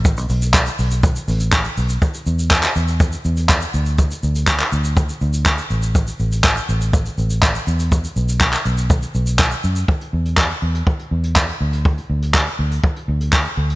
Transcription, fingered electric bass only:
X:1
M:4/4
L:1/16
Q:1/4=122
K:Ador
V:1 name="Fingered electric bass" clef=bass
A,,, B,,, B,,,4 B,,,4 A,,,4 B,,,2 | z2 E,,4 E,,4 E,,4 D,,2- | D,,2 D,,4 D,,4 D,,4 A,,,2- | A,,,2 A,,,4 A,,,4 A,,,4 E,,2- |
E,,2 B,,,4 B,,,4 B,,,4 F,,2 | z2 E,,4 E,,2 z2 E,,4 D,,2- | D,,2 D,,4 D,,2 z2 D,,4 D,,2 |]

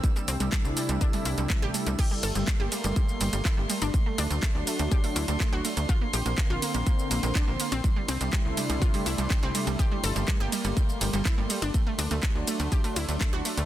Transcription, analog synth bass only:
X:1
M:4/4
L:1/16
Q:1/4=123
K:Gdor
V:1 name="Analog synth bass" clef=bass
z2 C,, C,, z C,, z C,, z2 C,, C,, z A,,, z C,, | z2 G,,, G,,, z G,,, z G,,, z2 G,,, G,,, z G,,, z G,,, | z2 D,, D,, z D,, z D,, z2 D,, D,, z D,, z D,, | z2 B,,, B,,, z B,,, z B,,, z2 B,,, B,,, z B,,, z B,,, |
z2 C,, C,, z C,, z C,, z2 C,, C,, z C,, z C,, | z2 G,,, G,,, z G,,, z G,,, z2 G,,, G,,, z G,,, z G,,, | z2 D,, D,, z D,, z D,, z2 D,, D,, z D,, z D,, |]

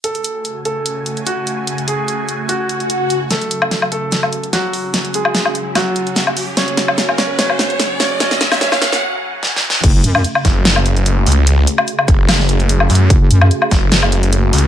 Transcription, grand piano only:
X:1
M:4/4
L:1/8
Q:"Swing 16ths" 1/4=147
K:F#m
V:1 name="Grand piano"
A3 A3 F2- | F G3 F4 | [A,A]3 [A,A]3 [F,F]2- | [F,F] [G,G]3 [F,F]4 |
[Cc]3 [Cc] [Cc]3 [Cc] | [Cc]2 [Cc]2 z4 | z8 | z8 |
z8 |]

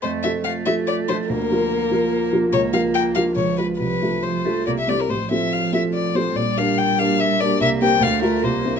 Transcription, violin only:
X:1
M:3/4
L:1/16
Q:1/4=143
K:F
V:1 name="Violin"
c2 e2 f2 e2 d2 c2 | B8- B2 z2 | _d2 f2 g2 f2 d2 _c2 | =B4 c4 d e d _B |
c2 e2 f2 e2 d2 c2 | d2 f2 g2 f2 e2 d2 | e2 g2 f2 B2 c3 z |]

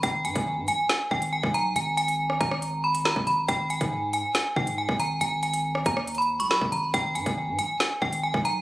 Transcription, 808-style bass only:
X:1
M:4/4
L:1/16
Q:1/4=139
K:G#m
V:1 name="808-style bass" clef=bass
G,,,2 G,, G,,,2 G,, G,,, z3 G,,,3 B,,,3 | G,,,6 G,,,6- G,,, G,,, G,,,2 | G,,,3 G,,4 z3 G,,3 G,,,3 | G,,,6 D,,4- D,, B,,,2 G,,, G,,,2 |
G,,,2 G,, G,,,2 G,, G,,, z3 G,,,3 B,,,3 |]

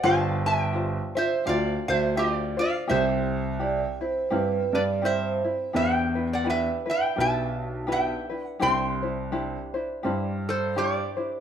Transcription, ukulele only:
X:1
M:4/4
L:1/8
Q:"Swing" 1/4=84
K:C
V:1 name="Ukulele"
[DFGc]2 [DFGc] [DFc] [DFGc]2 [DFGc] [DFc] | [CEG]2 [CEG] [CE] [CEG]2 [CEG] [CE] | [K:Em] [DEGB] [DEB] [DEGB] [DEB] [DEGB]2 [DEGB] [DEB] | [DEGc] [DEc] [DEGc] [DEc] [DEGc]2 [DEGc] [DEc] |]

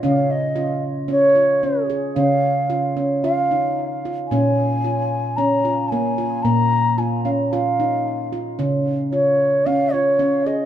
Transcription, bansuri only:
X:1
M:4/4
L:1/8
Q:"Swing 16ths" 1/4=112
K:Db
V:1 name="Bansuri"
f e2 z d3 z | f3 z f3 z | a4 b2 a2 | b2 a f f3 z |
z2 d2 f d2 e |]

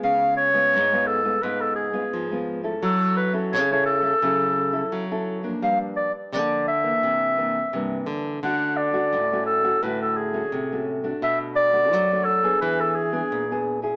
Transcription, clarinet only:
X:1
M:4/4
L:1/16
Q:1/4=86
K:Dlyd
V:1 name="Clarinet"
^e2 c4 A2 B A G4 z2 | A2 B2 c c A8 z2 | =f2 d2 d2 e8 z2 | f2 d4 A2 B A G4 z2 |
e2 d4 A2 B A G4 z2 |]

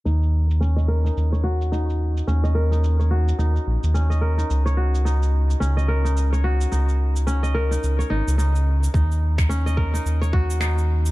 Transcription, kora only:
X:1
M:4/4
L:1/16
Q:"Swing 16ths" 1/4=108
K:Ebm
V:1 name="Kora"
E4 D e B E2 d G z E4 | D e B E2 d G z E4 D e B E | z d G z E4 D e B E2 d G z | E4 D e B E2 d E z E z3 |
E4 D e B E2 d G z E4 |]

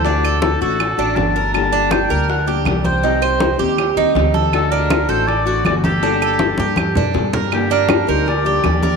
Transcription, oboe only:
X:1
M:4/4
L:1/8
Q:1/4=161
K:Gm
V:1 name="Oboe"
d2 A A3 a2 | a2 g2 ^f z2 g- | g3 z4 z | A B2 c d2 d G- |
G6 z2 | G B2 c d2 d2 |]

